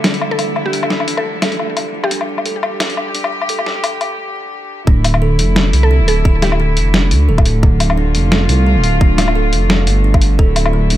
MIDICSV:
0, 0, Header, 1, 7, 480
1, 0, Start_track
1, 0, Key_signature, -1, "minor"
1, 0, Tempo, 344828
1, 1023, Time_signature, 4, 2, 24, 8
1, 15273, End_track
2, 0, Start_track
2, 0, Title_t, "Synth pluck"
2, 0, Program_c, 0, 84
2, 437, Note_on_c, 0, 69, 94
2, 719, Note_off_c, 0, 69, 0
2, 914, Note_on_c, 0, 67, 92
2, 1198, Note_off_c, 0, 67, 0
2, 1635, Note_on_c, 0, 69, 91
2, 1918, Note_off_c, 0, 69, 0
2, 2836, Note_on_c, 0, 67, 91
2, 3317, Note_off_c, 0, 67, 0
2, 8118, Note_on_c, 0, 69, 89
2, 8400, Note_off_c, 0, 69, 0
2, 8462, Note_on_c, 0, 69, 93
2, 8756, Note_off_c, 0, 69, 0
2, 8941, Note_on_c, 0, 67, 94
2, 9422, Note_off_c, 0, 67, 0
2, 15273, End_track
3, 0, Start_track
3, 0, Title_t, "Cello section"
3, 0, Program_c, 1, 48
3, 0, Note_on_c, 1, 50, 82
3, 0, Note_on_c, 1, 55, 76
3, 0, Note_on_c, 1, 64, 89
3, 2929, Note_off_c, 1, 64, 0
3, 2941, Note_on_c, 1, 67, 96
3, 6726, Note_off_c, 1, 55, 0
3, 6729, Note_off_c, 1, 50, 0
3, 6770, Note_off_c, 1, 67, 0
3, 6780, Note_on_c, 1, 64, 96
3, 6781, Note_on_c, 1, 57, 80
3, 6782, Note_on_c, 1, 50, 90
3, 10610, Note_off_c, 1, 64, 0
3, 10622, Note_on_c, 1, 65, 98
3, 14450, Note_off_c, 1, 65, 0
3, 14463, Note_on_c, 1, 64, 93
3, 15273, Note_off_c, 1, 50, 0
3, 15273, Note_off_c, 1, 57, 0
3, 15273, Note_off_c, 1, 64, 0
3, 15273, End_track
4, 0, Start_track
4, 0, Title_t, "Kalimba"
4, 0, Program_c, 2, 108
4, 63, Note_on_c, 2, 62, 84
4, 522, Note_off_c, 2, 62, 0
4, 541, Note_on_c, 2, 69, 75
4, 1001, Note_off_c, 2, 69, 0
4, 1021, Note_on_c, 2, 50, 86
4, 1251, Note_off_c, 2, 50, 0
4, 1501, Note_on_c, 2, 62, 75
4, 1960, Note_off_c, 2, 62, 0
4, 1981, Note_on_c, 2, 69, 86
4, 2441, Note_off_c, 2, 69, 0
4, 2463, Note_on_c, 2, 50, 79
4, 2692, Note_off_c, 2, 50, 0
4, 2942, Note_on_c, 2, 62, 88
4, 3401, Note_off_c, 2, 62, 0
4, 3422, Note_on_c, 2, 69, 75
4, 3881, Note_off_c, 2, 69, 0
4, 3901, Note_on_c, 2, 50, 81
4, 4131, Note_off_c, 2, 50, 0
4, 4382, Note_on_c, 2, 62, 78
4, 4841, Note_off_c, 2, 62, 0
4, 4862, Note_on_c, 2, 69, 84
4, 5321, Note_off_c, 2, 69, 0
4, 5341, Note_on_c, 2, 50, 76
4, 5571, Note_off_c, 2, 50, 0
4, 6783, Note_on_c, 2, 62, 85
4, 7242, Note_off_c, 2, 62, 0
4, 7264, Note_on_c, 2, 69, 76
4, 7722, Note_off_c, 2, 69, 0
4, 7744, Note_on_c, 2, 50, 82
4, 7973, Note_off_c, 2, 50, 0
4, 8225, Note_on_c, 2, 62, 79
4, 8683, Note_off_c, 2, 62, 0
4, 8704, Note_on_c, 2, 69, 88
4, 9162, Note_off_c, 2, 69, 0
4, 9184, Note_on_c, 2, 50, 75
4, 9413, Note_off_c, 2, 50, 0
4, 9663, Note_on_c, 2, 62, 85
4, 10122, Note_off_c, 2, 62, 0
4, 10143, Note_on_c, 2, 69, 79
4, 10602, Note_off_c, 2, 69, 0
4, 10622, Note_on_c, 2, 50, 84
4, 10852, Note_off_c, 2, 50, 0
4, 11101, Note_on_c, 2, 62, 78
4, 11561, Note_off_c, 2, 62, 0
4, 11581, Note_on_c, 2, 69, 88
4, 12041, Note_off_c, 2, 69, 0
4, 12062, Note_on_c, 2, 50, 78
4, 12292, Note_off_c, 2, 50, 0
4, 12540, Note_on_c, 2, 62, 88
4, 13000, Note_off_c, 2, 62, 0
4, 13021, Note_on_c, 2, 69, 73
4, 13481, Note_off_c, 2, 69, 0
4, 13501, Note_on_c, 2, 50, 82
4, 13731, Note_off_c, 2, 50, 0
4, 13980, Note_on_c, 2, 62, 78
4, 14211, Note_off_c, 2, 62, 0
4, 14461, Note_on_c, 2, 69, 84
4, 14921, Note_off_c, 2, 69, 0
4, 14941, Note_on_c, 2, 50, 81
4, 15171, Note_off_c, 2, 50, 0
4, 15273, End_track
5, 0, Start_track
5, 0, Title_t, "Synth texture"
5, 0, Program_c, 3, 99
5, 0, Note_on_c, 3, 53, 80
5, 0, Note_on_c, 3, 57, 80
5, 5826, Note_off_c, 3, 57, 0
5, 5848, Note_off_c, 3, 53, 0
5, 15273, End_track
6, 0, Start_track
6, 0, Title_t, "Detuned saw bass"
6, 0, Program_c, 4, 39
6, 6783, Note_on_c, 4, 26, 98
6, 7501, Note_on_c, 4, 29, 81
6, 7521, Note_off_c, 4, 26, 0
6, 7968, Note_off_c, 4, 29, 0
6, 7984, Note_on_c, 4, 36, 106
6, 8357, Note_on_c, 4, 26, 103
6, 8378, Note_off_c, 4, 36, 0
6, 9424, Note_on_c, 4, 29, 81
6, 9445, Note_off_c, 4, 26, 0
6, 9903, Note_on_c, 4, 38, 106
6, 9924, Note_off_c, 4, 29, 0
6, 10142, Note_on_c, 4, 26, 85
6, 10163, Note_off_c, 4, 38, 0
6, 10609, Note_off_c, 4, 26, 0
6, 10621, Note_on_c, 4, 26, 108
6, 11341, Note_on_c, 4, 29, 78
6, 11362, Note_off_c, 4, 26, 0
6, 11808, Note_off_c, 4, 29, 0
6, 11822, Note_on_c, 4, 36, 110
6, 12198, Note_on_c, 4, 26, 99
6, 12218, Note_off_c, 4, 36, 0
6, 13263, Note_on_c, 4, 29, 79
6, 13284, Note_off_c, 4, 26, 0
6, 13743, Note_on_c, 4, 31, 106
6, 13763, Note_off_c, 4, 29, 0
6, 14449, Note_off_c, 4, 31, 0
6, 14463, Note_on_c, 4, 26, 104
6, 15183, Note_on_c, 4, 29, 80
6, 15203, Note_off_c, 4, 26, 0
6, 15273, Note_off_c, 4, 29, 0
6, 15273, End_track
7, 0, Start_track
7, 0, Title_t, "Drums"
7, 58, Note_on_c, 9, 38, 117
7, 58, Note_on_c, 9, 42, 72
7, 194, Note_off_c, 9, 42, 0
7, 194, Note_on_c, 9, 42, 36
7, 197, Note_off_c, 9, 38, 0
7, 299, Note_on_c, 9, 77, 76
7, 333, Note_off_c, 9, 42, 0
7, 438, Note_off_c, 9, 77, 0
7, 539, Note_on_c, 9, 42, 64
7, 539, Note_on_c, 9, 77, 52
7, 678, Note_off_c, 9, 42, 0
7, 678, Note_off_c, 9, 77, 0
7, 780, Note_on_c, 9, 77, 53
7, 919, Note_off_c, 9, 77, 0
7, 1019, Note_on_c, 9, 42, 70
7, 1154, Note_on_c, 9, 77, 80
7, 1158, Note_off_c, 9, 42, 0
7, 1257, Note_on_c, 9, 38, 59
7, 1293, Note_off_c, 9, 77, 0
7, 1394, Note_on_c, 9, 77, 51
7, 1397, Note_off_c, 9, 38, 0
7, 1500, Note_on_c, 9, 42, 68
7, 1533, Note_off_c, 9, 77, 0
7, 1633, Note_on_c, 9, 77, 52
7, 1639, Note_off_c, 9, 42, 0
7, 1772, Note_off_c, 9, 77, 0
7, 1978, Note_on_c, 9, 38, 116
7, 1978, Note_on_c, 9, 42, 80
7, 1978, Note_on_c, 9, 77, 78
7, 2115, Note_off_c, 9, 42, 0
7, 2115, Note_on_c, 9, 42, 34
7, 2117, Note_off_c, 9, 38, 0
7, 2117, Note_off_c, 9, 77, 0
7, 2221, Note_on_c, 9, 77, 52
7, 2254, Note_off_c, 9, 42, 0
7, 2360, Note_off_c, 9, 77, 0
7, 2460, Note_on_c, 9, 42, 62
7, 2460, Note_on_c, 9, 77, 54
7, 2599, Note_off_c, 9, 42, 0
7, 2599, Note_off_c, 9, 77, 0
7, 2834, Note_on_c, 9, 77, 76
7, 2939, Note_on_c, 9, 42, 80
7, 2973, Note_off_c, 9, 77, 0
7, 3075, Note_on_c, 9, 77, 58
7, 3078, Note_off_c, 9, 42, 0
7, 3214, Note_off_c, 9, 77, 0
7, 3313, Note_on_c, 9, 77, 56
7, 3418, Note_on_c, 9, 42, 65
7, 3452, Note_off_c, 9, 77, 0
7, 3558, Note_off_c, 9, 42, 0
7, 3660, Note_on_c, 9, 77, 83
7, 3799, Note_off_c, 9, 77, 0
7, 3900, Note_on_c, 9, 38, 121
7, 3900, Note_on_c, 9, 42, 77
7, 3900, Note_on_c, 9, 77, 55
7, 4033, Note_off_c, 9, 42, 0
7, 4033, Note_on_c, 9, 42, 37
7, 4039, Note_off_c, 9, 38, 0
7, 4039, Note_off_c, 9, 77, 0
7, 4139, Note_on_c, 9, 77, 56
7, 4172, Note_off_c, 9, 42, 0
7, 4278, Note_off_c, 9, 77, 0
7, 4379, Note_on_c, 9, 42, 65
7, 4512, Note_on_c, 9, 77, 82
7, 4518, Note_off_c, 9, 42, 0
7, 4652, Note_off_c, 9, 77, 0
7, 4754, Note_on_c, 9, 77, 58
7, 4858, Note_on_c, 9, 42, 80
7, 4893, Note_off_c, 9, 77, 0
7, 4993, Note_on_c, 9, 77, 57
7, 4998, Note_off_c, 9, 42, 0
7, 5102, Note_on_c, 9, 38, 61
7, 5132, Note_off_c, 9, 77, 0
7, 5241, Note_off_c, 9, 38, 0
7, 5341, Note_on_c, 9, 42, 69
7, 5341, Note_on_c, 9, 77, 86
7, 5480, Note_off_c, 9, 42, 0
7, 5480, Note_off_c, 9, 77, 0
7, 5581, Note_on_c, 9, 42, 39
7, 5581, Note_on_c, 9, 77, 60
7, 5720, Note_off_c, 9, 42, 0
7, 5720, Note_off_c, 9, 77, 0
7, 6782, Note_on_c, 9, 36, 115
7, 6921, Note_off_c, 9, 36, 0
7, 7022, Note_on_c, 9, 42, 85
7, 7022, Note_on_c, 9, 77, 53
7, 7154, Note_off_c, 9, 77, 0
7, 7154, Note_on_c, 9, 77, 84
7, 7162, Note_off_c, 9, 42, 0
7, 7294, Note_off_c, 9, 77, 0
7, 7502, Note_on_c, 9, 42, 76
7, 7641, Note_off_c, 9, 42, 0
7, 7742, Note_on_c, 9, 38, 126
7, 7881, Note_off_c, 9, 38, 0
7, 7982, Note_on_c, 9, 42, 86
7, 8121, Note_off_c, 9, 42, 0
7, 8463, Note_on_c, 9, 42, 71
7, 8602, Note_off_c, 9, 42, 0
7, 8702, Note_on_c, 9, 36, 110
7, 8841, Note_off_c, 9, 36, 0
7, 8942, Note_on_c, 9, 38, 66
7, 8942, Note_on_c, 9, 42, 85
7, 8942, Note_on_c, 9, 77, 56
7, 9076, Note_off_c, 9, 77, 0
7, 9076, Note_on_c, 9, 77, 84
7, 9081, Note_off_c, 9, 38, 0
7, 9081, Note_off_c, 9, 42, 0
7, 9215, Note_off_c, 9, 77, 0
7, 9420, Note_on_c, 9, 42, 70
7, 9560, Note_off_c, 9, 42, 0
7, 9659, Note_on_c, 9, 38, 118
7, 9799, Note_off_c, 9, 38, 0
7, 9900, Note_on_c, 9, 42, 82
7, 10040, Note_off_c, 9, 42, 0
7, 10274, Note_on_c, 9, 77, 52
7, 10276, Note_on_c, 9, 36, 105
7, 10378, Note_on_c, 9, 42, 73
7, 10414, Note_off_c, 9, 77, 0
7, 10416, Note_off_c, 9, 36, 0
7, 10517, Note_off_c, 9, 42, 0
7, 10621, Note_on_c, 9, 36, 121
7, 10761, Note_off_c, 9, 36, 0
7, 10861, Note_on_c, 9, 42, 84
7, 10861, Note_on_c, 9, 77, 53
7, 10995, Note_off_c, 9, 77, 0
7, 10995, Note_on_c, 9, 77, 83
7, 11000, Note_off_c, 9, 42, 0
7, 11135, Note_off_c, 9, 77, 0
7, 11340, Note_on_c, 9, 42, 70
7, 11480, Note_off_c, 9, 42, 0
7, 11579, Note_on_c, 9, 38, 127
7, 11718, Note_off_c, 9, 38, 0
7, 11819, Note_on_c, 9, 42, 77
7, 11959, Note_off_c, 9, 42, 0
7, 12300, Note_on_c, 9, 42, 71
7, 12439, Note_off_c, 9, 42, 0
7, 12542, Note_on_c, 9, 36, 116
7, 12681, Note_off_c, 9, 36, 0
7, 12781, Note_on_c, 9, 38, 64
7, 12781, Note_on_c, 9, 42, 83
7, 12781, Note_on_c, 9, 77, 50
7, 12915, Note_off_c, 9, 77, 0
7, 12915, Note_on_c, 9, 77, 78
7, 12920, Note_off_c, 9, 38, 0
7, 12920, Note_off_c, 9, 42, 0
7, 13054, Note_off_c, 9, 77, 0
7, 13261, Note_on_c, 9, 42, 67
7, 13400, Note_off_c, 9, 42, 0
7, 13500, Note_on_c, 9, 38, 122
7, 13639, Note_off_c, 9, 38, 0
7, 13739, Note_on_c, 9, 42, 77
7, 13879, Note_off_c, 9, 42, 0
7, 14116, Note_on_c, 9, 77, 49
7, 14117, Note_on_c, 9, 36, 107
7, 14220, Note_on_c, 9, 42, 66
7, 14256, Note_off_c, 9, 36, 0
7, 14256, Note_off_c, 9, 77, 0
7, 14359, Note_off_c, 9, 42, 0
7, 14462, Note_on_c, 9, 36, 111
7, 14601, Note_off_c, 9, 36, 0
7, 14700, Note_on_c, 9, 42, 81
7, 14700, Note_on_c, 9, 77, 55
7, 14833, Note_off_c, 9, 77, 0
7, 14833, Note_on_c, 9, 77, 81
7, 14839, Note_off_c, 9, 42, 0
7, 14972, Note_off_c, 9, 77, 0
7, 15177, Note_on_c, 9, 42, 68
7, 15273, Note_off_c, 9, 42, 0
7, 15273, End_track
0, 0, End_of_file